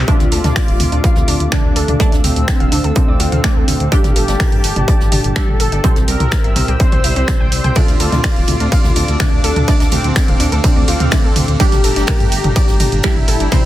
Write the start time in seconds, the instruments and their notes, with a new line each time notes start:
Already playing: ambient pad C4 G4 D5
0.08 synth stab D3 A3 D4, analog synth pad A3 F5 D6, ambient pad D4, synth arpeggio sound D4 D5, analog synth lead F4, kick, closed hi-hat, mid tom
0.20 detuned saw bass D2, snare, closed hi-hat
0.31 detuned saw bass D2, synth arpeggio sound A4 A5, closed hi-hat, open hi-hat
0.44 detuned saw bass D2, synth arpeggio sound D4 D5, snare, closed hi-hat, mid tom
0.56 ambient pad A4, synth arpeggio sound D5 D6, finger snap, kick, snare, closed hi-hat, open hi-hat
0.68 detuned saw bass D1, closed hi-hat
0.80 detuned saw bass D2, closed hi-hat, mid tom, open hi-hat
0.92 detuned saw bass D2, synth arpeggio sound D4 D5, closed hi-hat
1.04 synth arpeggio sound F5 F6, kick, closed hi-hat
1.16 detuned saw bass D2, snare, mid tom
1.28 detuned saw bass D2, synth arpeggio sound D4 D5, closed hi-hat, open hi-hat
1.32 ambient pad F5
1.40 detuned saw bass D2, closed hi-hat
1.52 synth stab D3 A3 D4, analog synth lead D4, finger snap, kick, snare, closed hi-hat, mid tom
1.64 detuned saw bass D2
1.76 detuned saw bass D2, synth arpeggio sound A4 A5, closed hi-hat, open hi-hat
1.88 detuned saw bass D2, synth arpeggio sound D4 D5, closed hi-hat, mid tom
2.00 synth stab D3 A3 D4, synth arpeggio sound D5 D6, analog synth pad E6, kick, closed hi-hat
2.12 detuned saw bass D2, synth arpeggio sound D4 D5, snare, closed hi-hat
2.24 detuned saw bass D2, analog synth lead C4, closed hi-hat, mid tom, open hi-hat
2.36 detuned saw bass D2, closed hi-hat
2.48 finger snap, kick, snare, closed hi-hat
2.60 detuned saw bass D1, synth arpeggio sound F5 F6, closed hi-hat, mid tom
2.72 detuned saw bass D2, synth arpeggio sound D4 D5, closed hi-hat, open hi-hat
2.84 detuned saw bass D2, synth arpeggio sound A4 A5, closed hi-hat
2.95 analog synth lead C4, synth arpeggio sound D4 D5, kick, closed hi-hat, mid tom
3.08 detuned saw bass D2, synth arpeggio sound D5 D6
3.19 detuned saw bass D2, synth arpeggio sound F4 F5, closed hi-hat, open hi-hat
3.32 detuned saw bass D2, synth arpeggio sound F5 F6, closed hi-hat, mid tom
3.44 synth stab D3 A3 D4, synth arpeggio sound D4 D5, finger snap, kick, snare, closed hi-hat
3.56 detuned saw bass D2, synth arpeggio sound A4 A5
3.68 detuned saw bass D2, closed hi-hat, mid tom, open hi-hat
3.80 detuned saw bass D2, closed hi-hat
3.92 synth stab G3 D4 G4, synth arpeggio sound D4 D5, analog synth lead G4, ambient pad G4, analog synth pad G5 A5, kick, closed hi-hat
4.04 detuned saw bass G1, snare, closed hi-hat, mid tom
4.16 detuned saw bass G1, synth arpeggio sound A4 A5, closed hi-hat, open hi-hat
4.28 detuned saw bass G1, synth arpeggio sound D4 D5, snare, closed hi-hat
4.40 synth arpeggio sound A#4 A#5, ambient pad D5, finger snap, kick, snare, closed hi-hat, mid tom, open hi-hat
4.52 detuned saw bass G2, closed hi-hat
4.64 detuned saw bass G1, closed hi-hat, open hi-hat
4.76 detuned saw bass G1, synth arpeggio sound D4 D5, closed hi-hat, mid tom
4.88 synth arpeggio sound D5 D6, kick, closed hi-hat
5.00 detuned saw bass G1, snare
5.12 detuned saw bass G1, synth arpeggio sound D4 D5, closed hi-hat, mid tom, open hi-hat
5.24 detuned saw bass G1, closed hi-hat
5.36 synth stab G3 D4 G4, analog synth lead A4, finger snap, kick, snare, closed hi-hat
5.48 detuned saw bass G1, mid tom
5.60 detuned saw bass G1, synth arpeggio sound A4 A5, closed hi-hat, open hi-hat
5.72 detuned saw bass G1, synth arpeggio sound D4 D5, closed hi-hat
5.84 synth stab C3 G3 C4, ambient pad C4, analog synth pad C5 E6, synth arpeggio sound C5 C6, kick, closed hi-hat, mid tom
5.96 detuned saw bass C2, synth arpeggio sound C4 C5, snare, closed hi-hat
6.08 detuned saw bass C2, analog synth lead A#4, closed hi-hat, open hi-hat
6.20 detuned saw bass C2, closed hi-hat, mid tom
6.31 ambient pad E5, finger snap, kick, snare, closed hi-hat
6.44 detuned saw bass G1, synth arpeggio sound E5 E6, closed hi-hat
6.56 detuned saw bass C2, synth arpeggio sound C4 C5, closed hi-hat, mid tom, open hi-hat
6.68 detuned saw bass C2, synth arpeggio sound G4 G5, closed hi-hat
6.79 synth arpeggio sound C4 C5, analog synth lead C5, kick, closed hi-hat
6.92 detuned saw bass C2, synth arpeggio sound C5 C6, closed hi-hat, mid tom
7.04 detuned saw bass C2, synth arpeggio sound E4 E5, closed hi-hat, open hi-hat
7.16 detuned saw bass C2, synth arpeggio sound C4 C5, closed hi-hat
7.28 synth stab C3 G3 C4, finger snap, kick, snare, closed hi-hat, mid tom
7.40 detuned saw bass C2, synth arpeggio sound G5 G6
7.52 detuned saw bass C2, closed hi-hat, open hi-hat
7.64 detuned saw bass C2, synth arpeggio sound G5 G6, closed hi-hat, mid tom
7.75 synth stab D3 A3 D4, synth arpeggio sound D4 D5, ambient pad D4, analog synth lead F4, analog synth pad A4 F5 D6, kick, closed hi-hat, mid tom, ride
7.88 detuned saw bass D2, snare, closed hi-hat
7.95 ambient pad A4
8.00 detuned saw bass D2, synth arpeggio sound A4 A5, closed hi-hat, open hi-hat
8.12 detuned saw bass D2, synth arpeggio sound D4 D5, snare, closed hi-hat, mid tom
8.23 synth arpeggio sound D5 D6, finger snap, kick, snare, closed hi-hat, open hi-hat, ride
8.36 detuned saw bass D1, ambient pad F5, closed hi-hat
8.47 detuned saw bass D2, closed hi-hat, mid tom, open hi-hat
8.60 detuned saw bass D2, synth arpeggio sound D4 D5, closed hi-hat
8.72 synth arpeggio sound F5 F6, kick, closed hi-hat, ride
8.84 detuned saw bass D2, snare, mid tom
8.96 detuned saw bass D2, synth arpeggio sound D4 D5, closed hi-hat, open hi-hat
9.08 detuned saw bass D2, closed hi-hat
9.20 synth stab D3 A3 D4, analog synth lead D4, finger snap, kick, snare, closed hi-hat, mid tom, ride
9.32 detuned saw bass D2
9.44 detuned saw bass D2, synth arpeggio sound A4 A5, closed hi-hat, open hi-hat
9.56 detuned saw bass D2, synth arpeggio sound D4 D5, closed hi-hat, mid tom
9.68 synth stab D3 A3 D4, synth arpeggio sound D5 D6, kick, closed hi-hat, ride
9.80 detuned saw bass D2, synth arpeggio sound D4 D5, snare, closed hi-hat
9.91 detuned saw bass D2, analog synth lead C4, closed hi-hat, mid tom, open hi-hat
10.04 detuned saw bass D2, closed hi-hat
10.16 finger snap, kick, snare, closed hi-hat, ride
10.28 detuned saw bass D1, synth arpeggio sound F5 F6, closed hi-hat, mid tom
10.40 detuned saw bass D2, synth arpeggio sound D4 D5, closed hi-hat, open hi-hat
10.52 detuned saw bass D2, synth arpeggio sound A4 A5, closed hi-hat
10.64 analog synth lead C4, synth arpeggio sound D4 D5, kick, closed hi-hat, mid tom, ride
10.76 detuned saw bass D2, synth arpeggio sound D5 D6
10.88 detuned saw bass D2, synth arpeggio sound F4 F5, closed hi-hat, open hi-hat
11.00 detuned saw bass D2, synth arpeggio sound F5 F6, closed hi-hat, mid tom
11.11 synth stab D3 A3 D4, synth arpeggio sound D4 D5, finger snap, kick, snare, closed hi-hat, ride
11.24 detuned saw bass D2, synth arpeggio sound A4 A5
11.36 detuned saw bass D2, closed hi-hat, mid tom, open hi-hat
11.48 detuned saw bass D2, closed hi-hat
11.60 synth stab G3 D4 G4, analog synth pad A3 G5 A#5, synth arpeggio sound D4 D5, ambient pad G4, analog synth lead G4, kick, closed hi-hat, ride
11.72 detuned saw bass G1, snare, closed hi-hat, mid tom
11.80 ambient pad D5
11.84 detuned saw bass G1, synth arpeggio sound A4 A5, closed hi-hat, open hi-hat
11.96 detuned saw bass G1, synth arpeggio sound D4 D5, snare, closed hi-hat
12.07 synth arpeggio sound A#4, finger snap, kick, snare, closed hi-hat, mid tom, open hi-hat, ride
12.20 detuned saw bass G2, closed hi-hat
12.32 detuned saw bass G1, closed hi-hat, open hi-hat
12.44 detuned saw bass G1, synth arpeggio sound D4 D5, closed hi-hat, mid tom
12.56 synth arpeggio sound D5 D6, kick, closed hi-hat, ride
12.68 detuned saw bass G1, snare
12.80 detuned saw bass G1, synth arpeggio sound D4 D5, closed hi-hat, mid tom, open hi-hat
12.92 detuned saw bass G1, closed hi-hat
13.03 synth stab G3 D4 G4, analog synth lead E4, finger snap, kick, snare, closed hi-hat, ride
13.16 detuned saw bass G1, mid tom
13.28 detuned saw bass G1, synth arpeggio sound A4 A5, closed hi-hat, open hi-hat
13.40 detuned saw bass G1, synth arpeggio sound D4 D5, closed hi-hat
13.52 synth stab C3 G3 C4, synth arpeggio sound C5 C6, analog synth pad C5 E6, kick, closed hi-hat, mid tom, ride